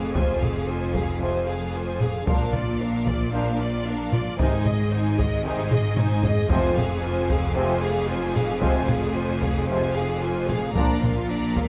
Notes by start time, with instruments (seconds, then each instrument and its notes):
Already playing: double bass section F1, cello section F2, violin section G#4 F5, viola section G#4, impact
0.12 trombone section C3 F3, french horn section G#3 C4, viola section F4, violin section C5 G#5, taiko
0.40 viola section G#4, violin section G#4 F5, taiko low-mid
0.67 viola section F4, violin section C5 G#5
0.94 violin section G#4 F5, viola section G#4, taiko
1.20 trombone section C3 F3, french horn section G#3 C4, viola section F4, violin section C5 G#5
1.48 viola section G#4, violin section G#4 F5
1.74 viola section F4, violin section C5 G#5
2.00 violin section G#4 F5, viola section G#4, taiko low-mid
2.25 double bass section A#1, trombone section A#2 F3, cello section A#2, french horn section A#3 D4, viola section D4, violin section A#4 F5, taiko
2.53 viola section F4, violin section D5, taiko low-mid
2.79 viola section D4, violin section A#4 F5
3.06 viola section F4, violin section D5, taiko
3.33 trombone section A#2 F3, french horn section A#3 D4, viola section D4, violin section A#4 F5
3.60 viola section F4, violin section D5
3.86 viola section D4, violin section A#4 F5
4.12 viola section F4, violin section D5, taiko low-mid
4.37 double bass section G#1, cello section G#2, trombone section C3 D#3, french horn section G#3 D#4, viola section D#4, violin section C5 G#5, taiko
4.65 viola section G#4, violin section D#5, taiko low-mid
4.91 viola section D#4, violin section C5 G#5
5.18 viola section G#4, violin section D#5, taiko
5.43 trombone section C3 D#3, french horn section G#3 D#4, viola section D#4, violin section C5 G#5
5.71 viola section G#4, violin section D#5, taiko low-mid
5.97 viola section D#4, violin section C5 G#5, taiko low-mid
6.24 viola section G#4, violin section D#5, taiko low
6.49 double bass section F1, cello section F2, timpani F2, trombone section C3 F3, french horn section G#3 C4, viola section F4, violin section C5 G#5, taiko
6.76 violin section G#4 F5, viola section G#4, taiko low-mid
7.02 viola section F4, violin section C5 G#5
7.30 viola section G#4, violin section G#4 F5, taiko
7.55 trombone section C3 F3, french horn section G#3 C4, viola section F4, violin section C5 G#5
7.82 violin section G#4 F5, viola section G#4
8.08 viola section F4, violin section C5 G#5
8.35 violin section G#4 F5, viola section G#4, taiko low-mid
8.60 trombone section C3 F3, french horn section G#3 C4, viola section F4, violin section C5 G#5, taiko
8.87 violin section G#4 F5, viola section G#4, taiko low-mid
9.14 viola section F4, violin section C5 G#5
9.41 violin section G#4 F5, viola section G#4, taiko
9.67 trombone section C3 F3, french horn section G#3 C4, viola section F4, violin section C5 G#5
9.94 violin section G#4 F5, viola section G#4
10.21 viola section F4, violin section C5 G#5
10.48 violin section G#4 F5, viola section G#4, taiko low-mid
10.73 double bass section A#1, trombone section A#2 F3, cello section A#2, french horn section A#3, viola section D4, violin section D5 A#5, taiko
10.77 french horn section D4
11.02 viola section F4, violin section A#4 F5, taiko low-mid
11.28 viola section D4, violin section D5 A#5
11.56 viola section F4, violin section A#4 F5, taiko